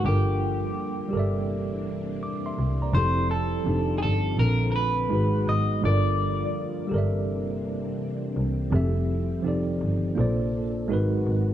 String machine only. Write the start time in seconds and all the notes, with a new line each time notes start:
0.05 D3 F3 G3 A#3 F4
1.12 C3 E3 C4 D4
2.94 F3 G3 E4
3.65 D#3 F4 D5
4.37 A#2 D3 A3 C4
5.10 D#3 F#3 G#3 B3 F#4
5.81 D3 F3 G3 A#3 F4
6.90 C3 E3 C4 D4
8.72 F3 G3 E4
9.44 D#3 D#4
10.15 C3 A#3 D4 A4
10.88 D#3 F#3 G#3 B3 F#4